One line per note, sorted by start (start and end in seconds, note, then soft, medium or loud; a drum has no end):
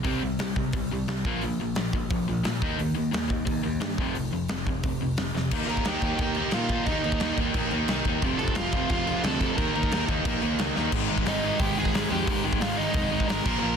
0.04 0.20 C2 medium
0.04 0.21 C3 medium
0.04 0.22 G3 medium
0.04 0.22 C4 loud
0.04 kick loud
0.04 open hi-hat medium
0.23 0.38 C2 medium
0.23 0.38 C3 medium
0.23 0.38 G3 medium
0.39 0.54 C2 medium
0.39 0.55 C3 medium
0.39 0.55 G3 medium
0.39 snare loud
0.39 open hi-hat medium
0.56 0.71 C2 medium
0.56 0.72 C3 medium
0.56 0.73 G3 medium
0.56 kick medium
0.73 0.89 C2 medium
0.73 0.90 C3 medium
0.73 0.90 G3 medium
0.73 kick loud
0.73 open hi-hat medium
0.92 1.06 C2 medium
0.92 1.07 C3 medium
0.92 1.07 G3 medium
1.08 1.23 C2 medium
1.08 1.24 C3 medium
1.08 1.24 G3 medium
1.08 snare loud
1.08 open hi-hat soft
1.25 1.40 A#1 loud
1.25 1.41 A#2 medium
1.25 1.42 F3 loud
1.25 1.42 A#3 loud
1.25 kick loud
1.41 1.57 A#1 loud
1.41 1.58 A#2 medium
1.41 1.58 F3 medium
1.41 open hi-hat medium
1.60 1.75 A#1 medium
1.60 1.75 A#2 medium
1.60 1.76 F3 medium
1.75 1.92 A#1 medium
1.75 1.92 A#2 medium
1.75 1.92 F3 medium
1.75 snare loud
1.75 open hi-hat medium
1.93 2.09 A#1 medium
1.93 2.09 A#2 medium
1.93 2.09 F3 medium
1.93 kick medium
2.10 2.26 A#1 medium
2.10 2.27 A#2 medium
2.10 2.26 F3 medium
2.10 kick loud
2.10 open hi-hat medium
2.28 2.44 A#1 medium
2.28 2.43 A#2 medium
2.28 2.44 F3 medium
2.44 2.61 A#1 medium
2.44 2.61 A#2 medium
2.44 2.60 F3 medium
2.44 snare loud
2.44 open hi-hat soft
2.62 2.77 D#2 medium
2.62 2.78 D#3 loud
2.62 2.78 A#3 loud
2.62 2.79 D#4 loud
2.62 kick loud
2.79 2.95 D#2 medium
2.79 2.95 D#3 medium
2.79 2.95 A#3 medium
2.79 open hi-hat medium
2.96 3.12 D#2 medium
2.96 3.12 D#3 medium
2.96 3.12 A#3 medium
3.13 3.29 D#2 medium
3.13 3.28 D#3 medium
3.13 3.29 A#3 medium
3.13 snare loud
3.13 open hi-hat medium
3.29 3.45 D#2 loud
3.29 3.45 D#3 medium
3.29 3.45 A#3 medium
3.29 kick medium
3.46 3.63 D#2 loud
3.46 3.62 D#3 medium
3.46 3.62 A#3 medium
3.46 kick loud
3.46 open hi-hat medium
3.63 3.80 D#2 medium
3.63 3.79 D#3 medium
3.63 3.79 A#3 medium
3.81 4.00 G2 loud
3.81 3.96 D#3 medium
3.81 3.97 A#3 loud
3.81 snare loud
3.81 open hi-hat medium
3.98 4.13 F1 medium
3.98 4.13 F2 loud
3.98 4.14 C3 loud
3.98 4.15 F3 loud
3.98 kick loud
4.14 4.30 F1 medium
4.14 4.30 F2 medium
4.14 4.30 C3 medium
4.14 open hi-hat medium
4.31 4.47 F1 medium
4.31 4.47 F2 medium
4.31 4.47 C3 medium
4.48 4.64 F1 medium
4.48 4.65 F2 medium
4.48 4.65 C3 medium
4.48 snare loud
4.48 open hi-hat medium
4.66 4.82 F1 medium
4.66 4.82 F2 medium
4.66 4.82 C3 medium
4.66 kick medium
4.83 4.99 F1 loud
4.83 4.99 F2 medium
4.83 4.99 C3 medium
4.83 kick loud
4.83 open hi-hat medium
5.01 5.16 F1 medium
5.01 5.16 F2 medium
5.01 5.16 C3 medium
5.17 5.33 F1 medium
5.17 5.33 F2 medium
5.17 5.34 C3 medium
5.17 snare loud
5.17 open hi-hat medium
5.35 5.53 F1 medium
5.35 5.50 F2 medium
5.35 5.50 C3 medium
5.35 snare medium
5.51 5.63 D#2 loud
5.51 5.69 D#3 medium
5.51 5.69 A#3 loud
5.51 5.68 D#4 loud
5.51 kick medium
5.51 crash loud
5.51 crash medium
5.67 5.80 D#2 medium
5.67 5.85 D#3 medium
5.67 5.86 A#3 medium
5.67 5.86 D#4 medium
5.67 5.83 A#4 medium
5.67 5.87 A#5 loud
5.67 crash medium
5.77 kick medium
5.84 5.96 D#2 medium
5.84 6.04 D#3 medium
5.84 6.03 A#3 medium
5.84 6.02 D#4 loud
5.84 6.16 G4 medium
5.84 6.20 G5 medium
5.84 snare loud
5.84 crash medium
6.01 6.14 D#2 loud
6.01 6.19 D#3 medium
6.01 6.20 A#3 medium
6.01 6.20 D#4 medium
6.01 kick medium
6.01 crash medium
6.18 6.41 D#2 medium
6.18 6.37 D#3 loud
6.18 6.37 A#3 loud
6.18 6.36 D#4 loud
6.18 6.52 G4 medium
6.18 6.54 G5 medium
6.18 kick loud
6.18 crash medium
6.35 6.54 D#3 medium
6.35 6.54 A#3 medium
6.35 6.55 D#4 medium
6.35 crash medium
6.51 6.76 A#2 medium
6.51 6.71 D#3 loud
6.51 6.85 F4 medium
6.51 6.89 F5 medium
6.51 snare loud
6.51 crash medium
6.56 6.71 A#3 medium
6.56 6.70 D#4 loud
6.69 6.86 D#3 medium
6.69 6.87 A#3 medium
6.69 6.87 D#4 medium
6.69 kick medium
6.69 crash medium
6.86 6.98 D#2 medium
6.86 7.04 D#3 medium
6.86 7.03 A#3 medium
6.86 7.34 D#4 medium
6.86 7.02 D#4 loud
6.86 7.34 D#5 medium
6.86 kick loud
6.86 crash medium
7.03 7.16 D#2 medium
7.03 7.20 D#3 medium
7.03 7.21 A#3 medium
7.03 7.21 D#4 medium
7.03 crash medium
7.12 kick medium
7.20 7.32 D#2 medium
7.20 7.38 D#3 medium
7.20 7.37 A#3 loud
7.20 7.37 D#4 medium
7.20 snare loud
7.20 crash medium
7.37 7.49 D#2 loud
7.37 7.53 D#3 medium
7.37 7.53 A#3 medium
7.37 7.54 D#4 medium
7.37 kick medium
7.37 crash medium
7.54 7.66 A#1 loud
7.54 7.72 D#3 medium
7.54 7.71 A#3 loud
7.54 7.71 D#4 loud
7.54 kick loud
7.54 crash medium
7.71 7.82 D#2 medium
7.71 7.88 D#3 medium
7.71 7.88 A#3 medium
7.71 7.88 D#4 medium
7.71 crash medium
7.88 8.00 C2 medium
7.88 8.07 D#3 medium
7.88 8.06 A#3 medium
7.88 8.05 D#4 loud
7.88 snare loud
7.88 crash medium
8.05 8.17 D#2 loud
8.05 8.23 D#3 medium
8.05 8.22 A#3 loud
8.05 8.22 D#4 loud
8.05 kick medium
8.05 crash medium
8.22 8.34 F1 medium
8.22 8.40 F2 medium
8.22 8.40 C3 medium
8.22 8.39 F3 loud
8.22 kick medium
8.22 crash medium
8.38 8.51 F1 medium
8.38 8.56 F2 medium
8.38 8.56 C3 medium
8.38 8.56 F3 loud
8.38 8.55 A4 medium
8.38 8.55 A5 medium
8.38 crash medium
8.48 kick medium
8.55 8.68 F1 medium
8.55 8.75 F2 medium
8.55 8.74 C3 medium
8.55 8.74 F3 loud
8.55 8.87 F4 medium
8.55 8.90 F5 medium
8.55 snare loud
8.55 crash medium
8.72 8.85 F1 medium
8.72 8.89 F2 medium
8.72 8.90 C3 medium
8.72 8.90 F3 medium
8.72 kick medium
8.72 crash medium
8.89 9.13 F1 medium
8.89 9.07 F2 medium
8.89 9.06 C3 loud
8.89 9.06 F3 loud
8.89 9.22 F4 medium
8.89 9.26 F5 medium
8.89 kick loud
8.89 crash medium
9.07 9.23 F2 medium
9.07 9.24 C3 medium
9.07 9.24 F3 medium
9.07 crash medium
9.23 9.46 D2 medium
9.23 9.40 F2 medium
9.23 9.40 C3 loud
9.23 9.39 F3 medium
9.23 9.55 A4 medium
9.23 9.59 A5 loud
9.23 snare loud
9.23 crash medium
9.41 9.57 F2 medium
9.41 9.56 C3 loud
9.41 9.57 F3 loud
9.41 kick medium
9.41 crash medium
9.56 9.69 D#2 medium
9.56 9.74 D#3 medium
9.56 9.73 A#3 medium
9.56 9.73 D#4 loud
9.56 10.04 A#4 medium
9.56 10.05 A#5 loud
9.56 kick loud
9.56 crash medium
9.74 9.87 D#2 medium
9.74 9.91 D#3 medium
9.74 9.90 A#3 medium
9.74 9.91 D#4 medium
9.74 crash medium
9.83 kick loud
9.91 10.03 D#2 medium
9.91 10.08 D#3 medium
9.91 10.07 A#3 medium
9.91 10.06 D#4 medium
9.91 snare loud
9.91 crash medium
10.07 10.20 D#2 loud
10.07 10.24 D#3 medium
10.07 10.24 A#3 medium
10.07 10.25 D#4 medium
10.07 kick medium
10.07 crash medium
10.25 10.37 A#1 medium
10.25 10.41 D#3 loud
10.25 10.40 A#3 loud
10.25 10.40 D#4 loud
10.25 kick loud
10.25 crash medium
10.42 10.54 D#2 medium
10.42 10.58 D#3 medium
10.42 10.59 A#3 medium
10.42 10.58 D#4 medium
10.42 crash medium
10.59 10.71 C#2 medium
10.59 10.75 D#3 medium
10.59 10.75 A#3 medium
10.59 10.75 D#4 medium
10.59 snare loud
10.59 crash medium
10.76 10.88 D#2 loud
10.76 10.92 D#3 medium
10.76 10.92 A#3 medium
10.76 10.92 D#4 loud
10.76 snare medium
10.92 11.05 G#1 loud
10.92 11.10 G#2 loud
10.92 11.09 D#3 loud
10.92 11.09 G#3 loud
10.92 kick loud
10.92 crash loud
11.09 11.22 G#1 medium
11.09 11.25 G#2 medium
11.09 11.24 D#3 medium
11.09 11.26 G#3 medium
11.18 kick medium
11.25 11.51 G#1 medium
11.25 11.43 G#2 medium
11.25 11.42 D#3 medium
11.25 11.41 G#3 medium
11.25 11.58 D#4 medium
11.25 11.59 D#5 medium
11.25 snare loud
11.25 open hi-hat medium
11.42 11.59 G#2 medium
11.42 11.59 D#3 medium
11.42 11.60 G#3 medium
11.59 11.72 G#1 medium
11.59 11.77 G#2 medium
11.59 11.76 D#3 medium
11.59 11.76 G#3 loud
11.59 11.76 G4 medium
11.59 11.77 G5 medium
11.59 kick loud
11.59 open hi-hat medium
11.77 11.89 G#1 medium
11.77 11.92 G#2 medium
11.77 11.92 D#3 medium
11.77 11.93 G#3 medium
11.77 12.10 G#4 medium
11.77 12.11 G#5 medium
11.85 kick medium
11.93 12.06 G#1 medium
11.93 12.10 G#2 medium
11.93 12.10 D#3 medium
11.93 12.09 G#3 loud
11.93 snare loud
11.93 open hi-hat medium
12.10 12.23 F2 medium
12.10 12.26 G#2 loud
12.10 12.27 D#3 loud
12.10 12.27 G#3 loud
12.10 12.43 G4 medium
12.10 12.43 G5 medium
12.27 12.40 G#1 loud
12.27 12.43 G#2 loud
12.27 12.43 D#3 medium
12.27 12.42 G#3 loud
12.27 kick loud
12.27 open hi-hat medium
12.43 12.56 G#1 medium
12.43 12.59 G#2 medium
12.43 12.59 D#3 medium
12.43 12.60 G#3 loud
12.53 kick loud
12.60 12.85 G#1 medium
12.60 12.77 G#2 medium
12.60 12.77 D#3 medium
12.60 12.76 G#3 medium
12.60 12.77 F4 medium
12.60 12.77 F5 medium
12.60 snare loud
12.60 open hi-hat medium
12.77 12.94 G#2 medium
12.77 12.94 D#3 medium
12.77 12.95 G#3 medium
12.77 13.25 D#4 medium
12.77 13.30 D#5 loud
12.94 13.07 F1 loud
12.94 13.12 G#2 loud
12.94 13.11 D#3 medium
12.94 13.10 G#3 medium
12.94 kick loud
12.94 open hi-hat medium
13.11 13.24 G#1 medium
13.11 13.27 G#2 medium
13.11 13.27 D#3 medium
13.11 13.28 G#3 medium
13.20 kick medium
13.28 13.40 G#1 loud
13.28 13.44 G#2 loud
13.28 13.44 D#3 loud
13.28 13.45 G#3 medium
13.28 13.59 A#4 medium
13.28 13.58 A#5 medium
13.28 snare loud
13.28 open hi-hat medium
13.44 13.58 A#1 medium
13.44 13.61 A#2 loud
13.44 13.61 F3 loud
13.44 13.61 A#3 loud
13.44 kick loud
13.44 crash loud
13.59 13.74 A#1 medium
13.59 13.77 A#2 medium
13.59 13.77 F3 loud
13.59 13.77 A#3 medium
13.59 13.77 A#4 medium
13.59 13.77 A#5 loud